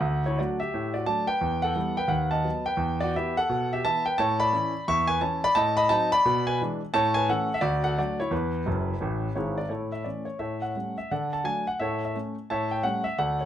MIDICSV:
0, 0, Header, 1, 2, 480
1, 0, Start_track
1, 0, Tempo, 346021
1, 46, Time_signature, 4, 2, 24, 8
1, 18661, End_track
2, 0, Start_track
2, 0, Title_t, "Grand piano"
2, 0, Program_c, 0, 0
2, 0, Note_on_c, 0, 69, 56
2, 0, Note_on_c, 0, 78, 80
2, 10, Note_on_c, 0, 38, 83
2, 292, Control_c, 0, 64, 127
2, 314, Note_off_c, 0, 69, 0
2, 332, Note_off_c, 0, 78, 0
2, 361, Note_on_c, 0, 73, 77
2, 373, Note_on_c, 0, 64, 59
2, 432, Note_off_c, 0, 38, 0
2, 526, Note_off_c, 0, 64, 0
2, 532, Note_off_c, 0, 73, 0
2, 535, Note_on_c, 0, 74, 69
2, 542, Control_c, 0, 64, 0
2, 549, Note_on_c, 0, 54, 52
2, 557, Note_on_c, 0, 66, 59
2, 558, Note_on_c, 0, 57, 51
2, 560, Note_on_c, 0, 62, 53
2, 806, Note_off_c, 0, 54, 0
2, 812, Note_off_c, 0, 57, 0
2, 814, Note_off_c, 0, 62, 0
2, 822, Note_off_c, 0, 66, 0
2, 828, Note_on_c, 0, 76, 86
2, 831, Note_off_c, 0, 74, 0
2, 843, Note_on_c, 0, 67, 63
2, 1026, Note_on_c, 0, 45, 70
2, 1280, Note_off_c, 0, 67, 0
2, 1302, Note_on_c, 0, 74, 74
2, 1306, Note_off_c, 0, 76, 0
2, 1322, Note_on_c, 0, 66, 61
2, 1424, Note_off_c, 0, 45, 0
2, 1463, Note_off_c, 0, 74, 0
2, 1476, Note_on_c, 0, 54, 49
2, 1477, Note_on_c, 0, 81, 95
2, 1480, Note_off_c, 0, 66, 0
2, 1483, Note_on_c, 0, 57, 51
2, 1483, Note_on_c, 0, 74, 61
2, 1495, Note_on_c, 0, 62, 48
2, 1741, Note_off_c, 0, 54, 0
2, 1746, Note_off_c, 0, 57, 0
2, 1755, Note_off_c, 0, 62, 0
2, 1763, Note_off_c, 0, 74, 0
2, 1767, Note_on_c, 0, 79, 98
2, 1773, Note_on_c, 0, 71, 67
2, 1780, Note_off_c, 0, 81, 0
2, 1959, Note_on_c, 0, 40, 78
2, 2214, Control_c, 0, 64, 127
2, 2223, Note_off_c, 0, 71, 0
2, 2250, Note_on_c, 0, 78, 92
2, 2254, Note_off_c, 0, 79, 0
2, 2274, Note_on_c, 0, 69, 66
2, 2367, Note_off_c, 0, 40, 0
2, 2436, Note_on_c, 0, 52, 57
2, 2439, Note_on_c, 0, 55, 57
2, 2452, Note_on_c, 0, 59, 63
2, 2453, Control_c, 0, 64, 0
2, 2700, Note_off_c, 0, 52, 0
2, 2702, Note_off_c, 0, 55, 0
2, 2712, Note_off_c, 0, 59, 0
2, 2714, Note_off_c, 0, 69, 0
2, 2735, Note_off_c, 0, 78, 0
2, 2736, Note_on_c, 0, 79, 87
2, 2755, Note_on_c, 0, 71, 75
2, 2885, Note_on_c, 0, 39, 82
2, 2891, Note_on_c, 0, 78, 90
2, 2893, Note_off_c, 0, 71, 0
2, 2913, Note_on_c, 0, 71, 72
2, 2916, Note_off_c, 0, 79, 0
2, 3161, Control_c, 0, 64, 127
2, 3196, Note_off_c, 0, 71, 0
2, 3201, Note_on_c, 0, 81, 86
2, 3206, Note_off_c, 0, 78, 0
2, 3217, Note_on_c, 0, 75, 65
2, 3306, Note_off_c, 0, 39, 0
2, 3386, Note_on_c, 0, 54, 46
2, 3393, Note_on_c, 0, 59, 50
2, 3416, Control_c, 0, 64, 0
2, 3652, Note_off_c, 0, 54, 0
2, 3657, Note_off_c, 0, 59, 0
2, 3663, Note_off_c, 0, 75, 0
2, 3686, Note_on_c, 0, 79, 93
2, 3689, Note_off_c, 0, 81, 0
2, 3704, Note_on_c, 0, 71, 65
2, 3843, Note_on_c, 0, 40, 84
2, 4128, Control_c, 0, 64, 127
2, 4146, Note_off_c, 0, 71, 0
2, 4169, Note_on_c, 0, 74, 93
2, 4171, Note_off_c, 0, 79, 0
2, 4205, Note_on_c, 0, 66, 71
2, 4264, Note_off_c, 0, 40, 0
2, 4351, Note_off_c, 0, 74, 0
2, 4357, Note_off_c, 0, 66, 0
2, 4368, Control_c, 0, 64, 0
2, 4383, Note_on_c, 0, 52, 51
2, 4386, Note_on_c, 0, 76, 86
2, 4395, Note_on_c, 0, 67, 63
2, 4396, Note_on_c, 0, 64, 60
2, 4404, Note_on_c, 0, 59, 55
2, 4638, Note_off_c, 0, 52, 0
2, 4648, Note_off_c, 0, 64, 0
2, 4653, Note_off_c, 0, 59, 0
2, 4656, Note_off_c, 0, 67, 0
2, 4671, Note_off_c, 0, 76, 0
2, 4680, Note_on_c, 0, 78, 103
2, 4683, Note_on_c, 0, 69, 72
2, 4848, Note_on_c, 0, 47, 82
2, 5116, Note_off_c, 0, 69, 0
2, 5147, Note_off_c, 0, 78, 0
2, 5171, Note_on_c, 0, 76, 86
2, 5180, Note_on_c, 0, 67, 62
2, 5249, Note_off_c, 0, 47, 0
2, 5324, Note_off_c, 0, 67, 0
2, 5325, Note_off_c, 0, 76, 0
2, 5334, Note_on_c, 0, 59, 51
2, 5335, Note_on_c, 0, 81, 111
2, 5338, Note_on_c, 0, 52, 49
2, 5345, Note_on_c, 0, 76, 82
2, 5347, Note_on_c, 0, 64, 50
2, 5591, Note_off_c, 0, 59, 0
2, 5595, Note_off_c, 0, 52, 0
2, 5601, Note_off_c, 0, 64, 0
2, 5610, Note_off_c, 0, 76, 0
2, 5625, Note_off_c, 0, 81, 0
2, 5627, Note_on_c, 0, 79, 92
2, 5654, Note_on_c, 0, 71, 68
2, 5798, Note_off_c, 0, 79, 0
2, 5799, Note_on_c, 0, 81, 113
2, 5801, Note_off_c, 0, 71, 0
2, 5815, Note_on_c, 0, 45, 91
2, 5827, Note_on_c, 0, 73, 81
2, 6030, Control_c, 0, 64, 127
2, 6090, Note_off_c, 0, 73, 0
2, 6096, Note_off_c, 0, 81, 0
2, 6098, Note_on_c, 0, 83, 108
2, 6106, Note_on_c, 0, 74, 81
2, 6212, Note_off_c, 0, 45, 0
2, 6282, Note_on_c, 0, 61, 58
2, 6286, Note_on_c, 0, 52, 48
2, 6291, Control_c, 0, 64, 0
2, 6294, Note_on_c, 0, 64, 65
2, 6542, Note_off_c, 0, 61, 0
2, 6545, Note_off_c, 0, 52, 0
2, 6551, Note_off_c, 0, 64, 0
2, 6711, Note_off_c, 0, 74, 0
2, 6752, Note_off_c, 0, 83, 0
2, 6770, Note_on_c, 0, 40, 80
2, 6771, Note_on_c, 0, 85, 116
2, 6781, Note_on_c, 0, 76, 86
2, 7039, Note_on_c, 0, 80, 107
2, 7047, Note_off_c, 0, 76, 0
2, 7061, Note_on_c, 0, 71, 76
2, 7062, Note_off_c, 0, 85, 0
2, 7168, Note_off_c, 0, 40, 0
2, 7222, Note_off_c, 0, 71, 0
2, 7222, Note_on_c, 0, 52, 56
2, 7223, Note_off_c, 0, 80, 0
2, 7230, Note_on_c, 0, 81, 84
2, 7231, Note_on_c, 0, 61, 54
2, 7236, Note_on_c, 0, 64, 61
2, 7241, Note_on_c, 0, 73, 62
2, 7487, Note_off_c, 0, 52, 0
2, 7494, Note_off_c, 0, 61, 0
2, 7497, Note_off_c, 0, 64, 0
2, 7516, Note_off_c, 0, 73, 0
2, 7530, Note_off_c, 0, 81, 0
2, 7547, Note_on_c, 0, 83, 116
2, 7548, Note_on_c, 0, 74, 93
2, 7699, Note_on_c, 0, 81, 121
2, 7705, Note_off_c, 0, 74, 0
2, 7715, Note_on_c, 0, 45, 91
2, 7717, Note_off_c, 0, 83, 0
2, 7723, Note_on_c, 0, 75, 87
2, 7950, Control_c, 0, 64, 127
2, 7992, Note_off_c, 0, 75, 0
2, 8000, Note_on_c, 0, 83, 111
2, 8005, Note_off_c, 0, 81, 0
2, 8013, Note_on_c, 0, 75, 93
2, 8120, Note_off_c, 0, 45, 0
2, 8168, Note_off_c, 0, 75, 0
2, 8173, Note_on_c, 0, 81, 116
2, 8182, Note_on_c, 0, 54, 62
2, 8182, Note_on_c, 0, 60, 61
2, 8183, Note_off_c, 0, 83, 0
2, 8187, Note_on_c, 0, 63, 67
2, 8189, Note_on_c, 0, 75, 84
2, 8207, Control_c, 0, 64, 0
2, 8447, Note_off_c, 0, 54, 0
2, 8447, Note_off_c, 0, 60, 0
2, 8451, Note_off_c, 0, 63, 0
2, 8468, Note_off_c, 0, 75, 0
2, 8482, Note_off_c, 0, 81, 0
2, 8491, Note_on_c, 0, 83, 119
2, 8516, Note_on_c, 0, 74, 82
2, 8676, Note_on_c, 0, 47, 93
2, 8923, Control_c, 0, 64, 127
2, 8949, Note_off_c, 0, 74, 0
2, 8970, Note_off_c, 0, 83, 0
2, 8973, Note_on_c, 0, 80, 96
2, 8983, Note_on_c, 0, 71, 68
2, 9080, Note_off_c, 0, 47, 0
2, 9142, Note_off_c, 0, 71, 0
2, 9149, Note_off_c, 0, 80, 0
2, 9158, Control_c, 0, 64, 0
2, 9171, Note_on_c, 0, 56, 48
2, 9172, Note_on_c, 0, 52, 62
2, 9189, Note_on_c, 0, 62, 58
2, 9428, Note_off_c, 0, 56, 0
2, 9429, Note_off_c, 0, 52, 0
2, 9441, Note_off_c, 0, 62, 0
2, 9622, Note_on_c, 0, 81, 123
2, 9626, Note_on_c, 0, 45, 103
2, 9642, Note_on_c, 0, 73, 88
2, 9879, Control_c, 0, 64, 127
2, 9909, Note_on_c, 0, 80, 108
2, 9915, Note_off_c, 0, 73, 0
2, 9925, Note_off_c, 0, 81, 0
2, 9936, Note_on_c, 0, 71, 75
2, 10034, Note_off_c, 0, 45, 0
2, 10097, Note_off_c, 0, 80, 0
2, 10098, Note_off_c, 0, 71, 0
2, 10113, Note_on_c, 0, 52, 54
2, 10113, Note_on_c, 0, 57, 51
2, 10119, Control_c, 0, 64, 0
2, 10119, Note_on_c, 0, 61, 61
2, 10119, Note_on_c, 0, 78, 95
2, 10134, Note_on_c, 0, 69, 83
2, 10375, Note_off_c, 0, 52, 0
2, 10375, Note_off_c, 0, 57, 0
2, 10379, Note_off_c, 0, 61, 0
2, 10462, Note_on_c, 0, 76, 94
2, 10484, Note_off_c, 0, 69, 0
2, 10503, Note_off_c, 0, 78, 0
2, 10558, Note_on_c, 0, 66, 78
2, 10559, Note_on_c, 0, 74, 99
2, 10567, Note_on_c, 0, 38, 91
2, 10568, Note_off_c, 0, 76, 0
2, 10820, Control_c, 0, 64, 127
2, 10851, Note_off_c, 0, 66, 0
2, 10873, Note_on_c, 0, 78, 98
2, 10874, Note_off_c, 0, 74, 0
2, 10879, Note_on_c, 0, 69, 61
2, 10983, Note_off_c, 0, 38, 0
2, 11048, Note_off_c, 0, 69, 0
2, 11058, Note_off_c, 0, 78, 0
2, 11070, Note_on_c, 0, 54, 57
2, 11076, Note_on_c, 0, 74, 83
2, 11082, Note_on_c, 0, 66, 66
2, 11086, Control_c, 0, 64, 0
2, 11088, Note_on_c, 0, 57, 40
2, 11090, Note_on_c, 0, 62, 53
2, 11333, Note_off_c, 0, 54, 0
2, 11346, Note_off_c, 0, 57, 0
2, 11347, Note_off_c, 0, 62, 0
2, 11355, Note_off_c, 0, 66, 0
2, 11371, Note_on_c, 0, 73, 82
2, 11372, Note_off_c, 0, 74, 0
2, 11382, Note_on_c, 0, 64, 71
2, 11524, Note_off_c, 0, 64, 0
2, 11527, Note_on_c, 0, 40, 81
2, 11541, Note_on_c, 0, 71, 78
2, 11545, Note_on_c, 0, 64, 62
2, 11547, Note_off_c, 0, 73, 0
2, 11783, Control_c, 0, 64, 127
2, 11943, Note_off_c, 0, 40, 0
2, 12016, Note_on_c, 0, 42, 76
2, 12025, Note_on_c, 0, 30, 80
2, 12040, Control_c, 0, 64, 0
2, 12380, Note_off_c, 0, 42, 0
2, 12386, Note_off_c, 0, 30, 0
2, 12494, Note_on_c, 0, 45, 68
2, 12511, Note_on_c, 0, 33, 81
2, 12859, Note_off_c, 0, 45, 0
2, 12869, Note_off_c, 0, 33, 0
2, 12931, Note_off_c, 0, 64, 0
2, 12977, Note_on_c, 0, 73, 65
2, 12985, Note_off_c, 0, 71, 0
2, 12986, Note_on_c, 0, 32, 71
2, 12988, Note_on_c, 0, 44, 65
2, 12998, Note_on_c, 0, 68, 49
2, 12999, Note_on_c, 0, 64, 53
2, 13274, Note_off_c, 0, 68, 0
2, 13275, Note_off_c, 0, 64, 0
2, 13284, Note_off_c, 0, 73, 0
2, 13284, Note_on_c, 0, 74, 74
2, 13347, Note_off_c, 0, 32, 0
2, 13348, Note_off_c, 0, 44, 0
2, 13438, Note_on_c, 0, 73, 57
2, 13447, Note_on_c, 0, 45, 59
2, 13460, Note_on_c, 0, 64, 44
2, 13464, Note_on_c, 0, 69, 50
2, 13465, Note_off_c, 0, 74, 0
2, 13726, Control_c, 0, 64, 127
2, 13745, Note_off_c, 0, 64, 0
2, 13747, Note_off_c, 0, 69, 0
2, 13756, Note_off_c, 0, 73, 0
2, 13764, Note_on_c, 0, 76, 63
2, 13865, Note_off_c, 0, 45, 0
2, 13933, Note_on_c, 0, 74, 57
2, 13940, Note_on_c, 0, 52, 31
2, 13946, Note_off_c, 0, 76, 0
2, 13956, Note_on_c, 0, 61, 40
2, 13958, Note_on_c, 0, 57, 31
2, 13960, Control_c, 0, 64, 0
2, 14207, Note_off_c, 0, 52, 0
2, 14219, Note_off_c, 0, 61, 0
2, 14221, Note_off_c, 0, 57, 0
2, 14222, Note_on_c, 0, 73, 59
2, 14244, Note_off_c, 0, 74, 0
2, 14412, Note_off_c, 0, 73, 0
2, 14415, Note_on_c, 0, 76, 63
2, 14417, Note_on_c, 0, 45, 61
2, 14420, Note_on_c, 0, 69, 49
2, 14433, Note_on_c, 0, 73, 51
2, 14679, Control_c, 0, 64, 127
2, 14707, Note_off_c, 0, 69, 0
2, 14714, Note_off_c, 0, 73, 0
2, 14726, Note_off_c, 0, 76, 0
2, 14730, Note_on_c, 0, 78, 65
2, 14832, Note_off_c, 0, 45, 0
2, 14918, Note_on_c, 0, 55, 32
2, 14930, Control_c, 0, 64, 0
2, 14934, Note_on_c, 0, 57, 31
2, 14937, Note_on_c, 0, 61, 35
2, 15182, Note_off_c, 0, 55, 0
2, 15193, Note_off_c, 0, 57, 0
2, 15196, Note_off_c, 0, 61, 0
2, 15214, Note_off_c, 0, 78, 0
2, 15227, Note_on_c, 0, 76, 74
2, 15401, Note_off_c, 0, 76, 0
2, 15417, Note_on_c, 0, 50, 65
2, 15417, Note_on_c, 0, 78, 71
2, 15424, Note_on_c, 0, 74, 56
2, 15430, Note_on_c, 0, 69, 52
2, 15649, Control_c, 0, 64, 127
2, 15692, Note_off_c, 0, 74, 0
2, 15696, Note_off_c, 0, 69, 0
2, 15709, Note_off_c, 0, 78, 0
2, 15717, Note_on_c, 0, 81, 74
2, 15817, Note_off_c, 0, 50, 0
2, 15866, Note_on_c, 0, 54, 45
2, 15883, Note_on_c, 0, 80, 90
2, 15887, Note_off_c, 0, 81, 0
2, 15889, Note_on_c, 0, 62, 50
2, 15891, Control_c, 0, 64, 0
2, 15896, Note_on_c, 0, 57, 39
2, 16135, Note_off_c, 0, 54, 0
2, 16151, Note_off_c, 0, 62, 0
2, 16156, Note_off_c, 0, 57, 0
2, 16183, Note_off_c, 0, 80, 0
2, 16193, Note_on_c, 0, 78, 78
2, 16362, Note_on_c, 0, 76, 79
2, 16366, Note_off_c, 0, 78, 0
2, 16372, Note_on_c, 0, 45, 67
2, 16388, Note_on_c, 0, 69, 62
2, 16390, Note_on_c, 0, 73, 67
2, 16598, Control_c, 0, 64, 127
2, 16656, Note_off_c, 0, 69, 0
2, 16658, Note_off_c, 0, 73, 0
2, 16664, Note_off_c, 0, 76, 0
2, 16714, Note_on_c, 0, 76, 70
2, 16777, Note_off_c, 0, 45, 0
2, 16853, Note_on_c, 0, 57, 46
2, 16860, Note_on_c, 0, 61, 43
2, 16863, Control_c, 0, 64, 0
2, 16868, Note_off_c, 0, 76, 0
2, 17115, Note_off_c, 0, 57, 0
2, 17120, Note_off_c, 0, 61, 0
2, 17343, Note_on_c, 0, 81, 87
2, 17348, Note_on_c, 0, 45, 73
2, 17357, Note_on_c, 0, 73, 71
2, 17359, Note_on_c, 0, 76, 76
2, 17557, Control_c, 0, 64, 127
2, 17623, Note_off_c, 0, 73, 0
2, 17624, Note_off_c, 0, 76, 0
2, 17636, Note_off_c, 0, 81, 0
2, 17636, Note_on_c, 0, 79, 77
2, 17748, Note_off_c, 0, 45, 0
2, 17802, Note_on_c, 0, 55, 46
2, 17803, Note_on_c, 0, 78, 91
2, 17811, Note_off_c, 0, 79, 0
2, 17814, Note_on_c, 0, 57, 45
2, 17817, Note_on_c, 0, 61, 48
2, 17823, Control_c, 0, 64, 0
2, 18068, Note_off_c, 0, 55, 0
2, 18077, Note_off_c, 0, 57, 0
2, 18079, Note_off_c, 0, 61, 0
2, 18089, Note_on_c, 0, 76, 85
2, 18107, Note_off_c, 0, 78, 0
2, 18277, Note_off_c, 0, 76, 0
2, 18290, Note_on_c, 0, 78, 87
2, 18291, Note_on_c, 0, 38, 70
2, 18293, Note_on_c, 0, 69, 65
2, 18296, Note_on_c, 0, 74, 62
2, 18536, Control_c, 0, 64, 127
2, 18572, Note_off_c, 0, 69, 0
2, 18574, Note_off_c, 0, 74, 0
2, 18591, Note_off_c, 0, 78, 0
2, 18596, Note_on_c, 0, 73, 59
2, 18661, Note_off_c, 0, 38, 0
2, 18661, Note_off_c, 0, 73, 0
2, 18661, End_track
0, 0, End_of_file